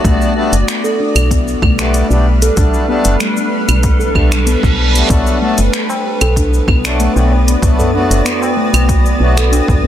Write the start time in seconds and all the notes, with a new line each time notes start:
Already playing: B3 F#4 D5
0.03 B1 G3 A3 B3 D4 A4, kick, closed hi-hat, cabasa
0.21 cabasa
0.29 B4
0.35 G3 A3 B3 D4 A4
0.43 D4
0.52 F#1, closed hi-hat, cabasa
0.68 finger snap, closed hi-hat, cabasa
0.84 A4, cabasa
1.00 D4
1.15 B1, closed hi-hat, cabasa, claves
1.31 B3, kick, closed hi-hat, cabasa
1.39 A4
1.48 cabasa
1.62 B1 A3, kick, claves
1.78 G3 A3 B3 D4 A4, finger snap, closed hi-hat, cabasa
1.94 closed hi-hat, cabasa
2.10 B1 G3 A3 B3 D4 G4, cabasa
2.42 A4, closed hi-hat, cabasa
2.57 B1 G3 A3 B3 D4 A4, kick, closed hi-hat, cabasa
2.74 cabasa
2.88 G3 A3 B3 D4 A4
3.05 F#1, closed hi-hat, cabasa
3.20 A3, finger snap, closed hi-hat, cabasa
3.37 cabasa
3.68 B1, closed hi-hat, cabasa, claves
3.83 kick, closed hi-hat, reverse cymbal, cabasa
4.00 A4, cabasa
4.14 B1 G3 A3 B3 D4 A4, kick, claves
4.32 finger snap, closed hi-hat, cabasa
4.46 B3, closed hi-hat, cabasa
4.63 B1, kick, cabasa
4.94 G3 A3 B3 D4 A4, closed hi-hat, cabasa
5.09 B1 F#3 A3 B3 D4 A4, kick, closed hi-hat, cabasa
5.27 cabasa
5.41 F#3 A3 B3 D4 A4
5.50 F#4
5.57 F#1 D5, closed hi-hat, tabla tin, cabasa
5.73 finger snap, closed hi-hat, cabasa
5.90 tabla na, cabasa
6.21 B1 A4, closed hi-hat, tabla na, cabasa, claves
6.36 D4, kick, closed hi-hat, cabasa
6.54 cabasa
6.68 B1 B3, kick, claves
6.84 F#3 A3 B3 D4 A4, finger snap, closed hi-hat, cabasa
6.99 A3, closed hi-hat, cabasa
7.15 B1 F#3 A3 B3 D4 F#4, tabla na, cabasa
7.32 tabla tin
7.48 closed hi-hat, cabasa
7.62 B1 F#3 A3 B3 D4 A4, kick, closed hi-hat, cabasa
7.79 A4, tabla ge, cabasa
7.93 F#3 A3 B3 D4 A4, tabla ge
8.10 F#1, closed hi-hat, tabla tin, cabasa
8.25 B3, finger snap, closed hi-hat, cabasa
8.42 tabla na, cabasa
8.57 A3
8.73 B1, closed hi-hat, tabla na, cabasa, claves
8.89 kick, closed hi-hat, cabasa
9.06 cabasa
9.20 B1 F#3 A3 B3 D4 A4
9.37 A4, finger snap, closed hi-hat, cabasa
9.52 D4, closed hi-hat, tabla na, cabasa
9.68 B1, kick, tabla tin, tabla ge, cabasa
9.83 B3, tabla na